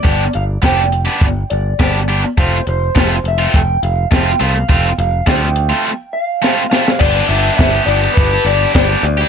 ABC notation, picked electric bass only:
X:1
M:4/4
L:1/8
Q:1/4=103
K:Gmix
V:1 name="Picked electric bass" clef=bass
G,,, G,,, F,,,2 G,,, G,,, G,,,2 | F,,, F,,, F,,, F,,, F,,, F,,, F,,, C,, | F,,, F,,, D,,2 z4 | G,,, G,,, G,,, G,,, G,,, G,,, G,,, D,, |]